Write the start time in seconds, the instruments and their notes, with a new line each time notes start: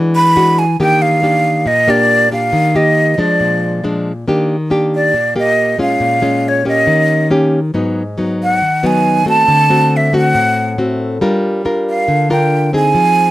Already playing: nylon-string guitar E3 G#3 D4 F#4
0.15 flute B5
0.36 nylon-string guitar G#3 D4 F#4
0.59 flute G#5
0.80 nylon-string guitar D#3 A#3 D4 G4, flute G5
1.02 flute F5
1.23 nylon-string guitar A#3 D4 G4
1.66 nylon-string guitar A#2, flute D#5
1.88 nylon-string guitar A#3 D4 G4, flute D5
2.31 nylon-string guitar A#3 D4 G4, flute F5
2.53 nylon-string guitar D#3
2.75 nylon-string guitar A#3 G4, flute D#5
3.14 nylon-string guitar F3, flute D#5
3.19 nylon-string guitar G#3 D4, flute D5
3.40 nylon-string guitar A#2
3.84 nylon-string guitar F3 G#3 D4
4.28 nylon-string guitar D#3 A#3 D4 G4
4.70 nylon-string guitar A#3 D4 G4
4.95 flute D5
5.14 nylon-string guitar A#2
5.36 nylon-string guitar A#3 G4, flute D#5
5.78 nylon-string guitar G#3 C#4 F4, flute F5
6.00 nylon-string guitar A#2
6.22 nylon-string guitar G#3 C#4 F4
6.48 flute C#5
6.65 nylon-string guitar A#3 C#4 G4, flute D#5
6.87 nylon-string guitar D#3
7.30 nylon-string guitar A#3 C#4 G4
7.74 nylon-string guitar G#2 F#3 B3 D#4
8.18 nylon-string guitar F#3 B3 D#4
8.43 flute F#5
8.62 nylon-string guitar D#3
8.83 nylon-string guitar F#3 B3 D#4, flute G#5
9.26 nylon-string guitar A3 C4 F#4, flute A5
9.48 nylon-string guitar D3
9.70 nylon-string guitar A3 C4 F#4
9.96 flute E5
10.13 nylon-string guitar A3 C4 F#4
10.18 flute F#5
10.34 nylon-string guitar A2
10.78 nylon-string guitar A3 C4 F#4
11.21 nylon-string guitar G3 D4 F4 A#4
11.65 nylon-string guitar D4 F4 A#4
11.89 flute F5
12.08 nylon-string guitar D3
12.30 nylon-string guitar D4 F4 A#4, flute G5
12.73 nylon-string guitar C4 D#4 G#4, flute G#5
12.94 nylon-string guitar F3